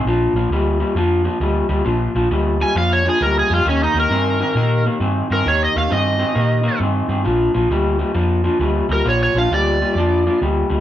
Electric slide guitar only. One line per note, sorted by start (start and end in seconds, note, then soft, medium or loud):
2.62 2.76 G#5 medium
2.78 2.91 F5 medium
2.93 3.06 C#5 medium
3.09 3.21 G#4 medium
3.22 3.36 A#4 medium
3.39 3.52 G#4 medium
3.54 3.66 F4 medium
3.69 3.82 C#4 medium
3.84 3.96 D#4 medium
4.00 4.84 A#4 medium
5.33 5.46 A#4 medium
5.48 5.61 C#5 medium
5.64 5.77 D#5 medium
5.78 5.91 F5 medium
5.93 6.79 D#5 medium
8.93 9.06 A#4 medium
9.09 9.22 C#5 medium
9.23 9.36 C#5 medium
9.38 9.51 F5 medium
9.54 10.39 D5 medium